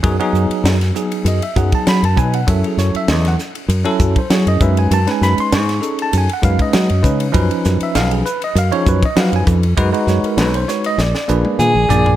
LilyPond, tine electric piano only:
\new Staff \with { instrumentName = "Tine electric piano" } { \time 4/4 \key gis \phrygian \tempo 4 = 99 << { r2 dis''16 e''16 fis''16 a''16 b''16 a''16 gis''16 fis''16 | e''16 gis'16 cis''16 e''16 dis''16 fis''16 r4 r16 bis'16 cis''16 dis''16 e''16 gis''16 | a''16 gis''16 b''16 bis''16 cis'''8. a''16 gis''16 fis''16 eis''16 dis''4 r16 | r8. e''16 eis''16 gis'16 b'16 dis''16 eis''16 gis'16 b'16 dis''16 eis''16 gis''16 r8 |
r8 cis''16 ais'16 b'16 bis'16 cis''16 dis''16 d''4.~ d''16 r16 | } \\ { <fis b dis' gis'>16 <fis b dis' gis'>4 r16 <fis b dis' gis'>8. r16 <fis b dis' gis'>8. r16 <fis b dis' b'>16 r16 | <fis cis' e' a'>4. r8. <fis cis' e' a'>8 r16 <fis cis' e' gis'>8 <gis cis' dis' b'>8 | r16 <gis cis' dis' b'>4 r16 <cis' dis' gis' a'>8. r16 <gis cis' dis' b'>8. r16 <gis cis' dis' b'>16 r16 | <eis cis' dis' b'>4. r8. <eis cis' dis' cis''>8 r16 <eis cis' dis' b'>8. r16 |
<gis dis' fis' b'>16 <gis dis' fis' b'>4 r16 <gis dis' fis' b'>8 r8 <ais d' gis' b'>8. r16 <ais d' gis' d''>16 r16 | } >> }